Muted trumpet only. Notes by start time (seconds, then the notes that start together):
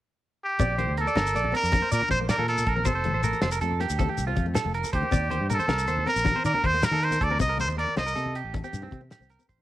0.44 G4
1.01 A4
1.56 A#4
1.93 A#4
2.11 C5
2.30 A#4
2.49 A4
2.69 A#4
2.87 A4
4.95 G4
5.54 A4
6.09 A#4
6.46 A#4
6.66 C5
6.85 A#4
7.04 C5
7.24 D5
7.42 D#5
7.61 C5
7.79 D5
7.98 D#5